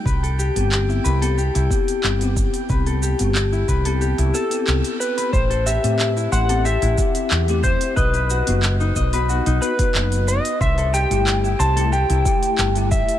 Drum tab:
HH |-o-o---o-o-o-o-o|-o-o---o-o-o-o-o|-o-o---o-o-o-o-o|-o-o---o-o-o-o-o|
SH |xxxxxxxxxxxxxxxx|xxxxxxxxxxxxxxxx|xxxxxxxxxxxxxxxx|xxxxxxxxxxxxxxxx|
CP |----x-------x---|----x-------x---|----x-------x---|----x-------x---|
BD |o---------o---o-|o-----o---------|o---------o---o-|o-----o----o----|

HH |-o-o---o-o-o-o-o|
SH |xxxxxxxxxxxxxxxx|
CP |----x-------x---|
BD |o---------o---o-|